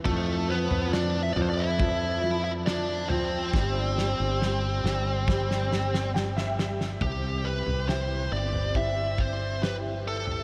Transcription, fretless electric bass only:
\new Staff \with { instrumentName = "Fretless electric bass" } { \clef bass \time 4/4 \key c \major \tempo 4 = 69 f,8. f,8. f,2~ f,8 | g,,8. g,,8. g,,2~ g,,8 | c,8. c,8. g,,2~ g,,8 | }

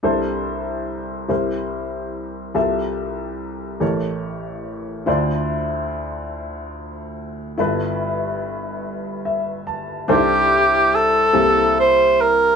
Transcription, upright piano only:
\new Staff \with { instrumentName = "Upright piano" } { \time 6/8 \key c \major \tempo 4. = 48 << { r2. | r2. | r2. | r2 e''8 a''8 |
r2. | } \\ { <c, c d' e' a' c''>4. <c, c e' g' bes' c''>4. | <c, c f' g' a' e''>4. <a,, a, g' a' bes' cis''>4. | <d, d e' f' c'' d''>2. | <g,, g, e' f' a' b'>2. |
<c, c d' ees' e' a' c''>4. <c, c bes c' e' g'>4. | } >> }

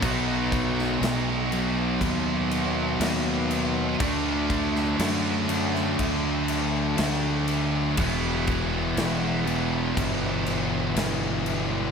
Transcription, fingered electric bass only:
\new Staff \with { instrumentName = "Fingered electric bass" } { \clef bass \time 4/4 \key e \minor \tempo 4 = 60 b,,4 b,,4 dis,4 dis,4 | d,4 fis,4 d,4 d,4 | e,,4 e,,4 g,,4 g,,4 | }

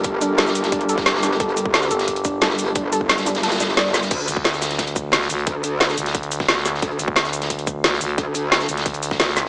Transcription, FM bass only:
\new Staff \with { instrumentName = "FM bass" } { \clef bass \time 4/4 \key g \dorian \tempo 4 = 177 r1 | r4. g,,4. r4 | r1 | r8 d,2~ d,8 d,8 d,8 |
r4. d,4. d,4 | r8 d,2~ d,8 d,8 d,8 | r4. d,4. d,4 | }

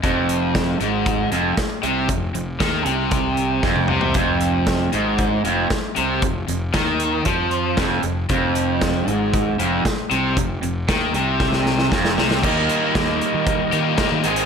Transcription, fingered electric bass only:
\new Staff \with { instrumentName = "Fingered electric bass" } { \clef bass \time 4/4 \key f \minor \tempo 4 = 116 f,,4. aes,,4 f,,8 r8 c,8 | f,,8 f,,8 ees,8 c,4. f,,8 c,8 | f,,4. aes,,4 f,,8 r8 c,8 | f,,8 f,,8 ees,4 f,4 f,,8 f,,8 |
f,,4. aes,,4 f,,8 r8 c,8 | f,,8 f,,8 ees,8 c,4. f,,8 c,8 | ees,8 r8 ees,8 r16 ees8 r16 ees8 r16 ees16 aes,,8 | }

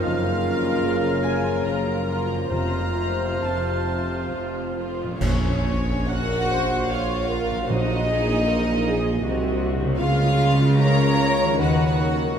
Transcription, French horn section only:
\new Staff \with { instrumentName = "French horn section" } { \clef bass \time 3/4 \key bes \minor \tempo 4 = 73 <des bes>2 <des bes>4 | <c c'>4 <c c'>4. r8 | r2. | r2. |
r2. | }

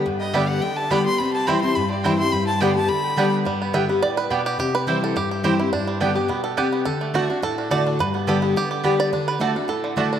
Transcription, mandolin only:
\new Staff \with { instrumentName = "Mandolin" } { \time 4/4 \key g \major \tempo 4 = 212 r4 <b g' d'' g''>8 r4. <b g' d'' g''>8 r8 | r4 <c' e' c'' g''>8 r4. <c' e' c'' g''>8 r8 | r4 <b g' d'' g''>8 r4. <b g' d'' g''>8 r8 | r4 <b g' d'' g''>8 r4. <b g' d'' g''>8 r8 |
r4 <c' e' c'' g''>8 r4. <c' e' c'' g''>8 r8 | r4 <b g' d'' g''>8 r4. <b g' d'' g''>8 r8 | r4 <a fis' d'' a''>8 r4. <a fis' d'' a''>8 r8 | r4 <b g' d'' g''>8 r4. <b g' d'' g''>8 r8 |
r4 <a fis' d'' a''>8 r4. <a fis' d'' a''>8 r8 | }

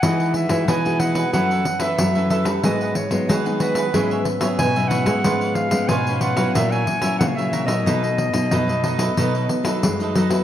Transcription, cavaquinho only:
\new Staff \with { instrumentName = "Cavaquinho" } { \time 4/4 \key e \major \tempo 4 = 92 <e' gis' b' dis''>16 <gis' b' dis''>16 r8 <e' gis' b' dis''>16 <gis' b' dis''>16 <e' gis' b' dis''>16 <gis' b' dis''>16 <e' a' b' e''>16 <a' b' e''>16 r16 <a' b' e''>8 <a' b' e''>16 <e' a' b' e''>16 <a' b' e''>16 | <fis' gis' b' fis''>16 <gis' b' fis''>16 r8 <fis' gis' b' fis''>16 <gis' b' fis''>16 <fis' gis' b' fis''>16 <gis' b' fis''>16 <e' gis' cis'' e''>16 <gis' cis'' e''>16 r16 <gis' cis'' e''>8 <gis' cis'' e''>16 <e' gis' cis'' e''>16 <gis' cis'' e''>16 | <eis' b' cis'' eis''>16 <b' cis'' eis''>16 r8 <eis' b' cis'' eis''>16 <b' cis'' eis''>16 <eis' b' cis'' eis''>16 <b' cis'' eis''>16 <fis' ais' cis'' e''>16 <ais' cis'' e''>16 r16 <ais' cis'' e''>8 <ais' cis'' e''>16 <fis' ais' cis'' e''>16 <ais' cis'' e''>16 | <dis' a' b' dis''>16 <a' b' dis''>16 r8 <dis' a' b' dis''>16 <a' b' dis''>16 <dis' a' b' dis''>16 <a' b' dis''>16 <dis' a' b' dis''>16 <a' b' dis''>16 r16 <a' b' dis''>8 <a' b' dis''>16 <dis' a' b' dis''>16 <a' b' dis''>16 | }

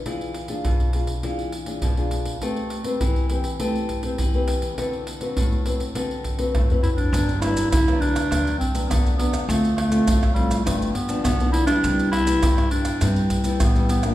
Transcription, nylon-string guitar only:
\new Staff \with { instrumentName = "Nylon-string guitar" } { \time 4/4 \key g \major \tempo 4 = 102 << { <d' f' gis'>8. <d' f' gis'>8. <d' f' gis'>16 r16 <d' f' gis'>8 r16 <d' f' gis'>8 <d' f' gis'>8. | <c' g' b'>8. <c' g' b'>8. <c' g' b'>16 r16 <c' g' b'>8. <c' g' b'>8 <c' g' b'>8. | <c' fis' b'>8 r16 <c' fis' b'>8. <c' fis' b'>16 r16 <c' fis' b'>8. <c' fis' b'>8 <c' fis' b'>8. | <fis b d'>16 r16 <fis b d'>8 r16 <fis b d'>8. <fis b d'>8 r16 <fis b d'>8. <fis b d'>8 |
<a c' f'>8. <a c' f'>8. <a c' f'>8 <f b d'>8 r16 <f b d'>8 <f b d'>8 <g b e'>16~ | <g b e'>8. <g b e'>8. <g b e'>16 r16 <g b e'>8. <g b e'>8 <g b e'>8 <f bes d'>16 | } \\ { e4 b,4 e4 b,4 | a4 e4 a4 e4 | d4 a,4 d4 a,4 | g,4 d4 g,4 d4 |
d4 a,4 g,4 d4 | c4 g,4 c4 g,4 | } >> }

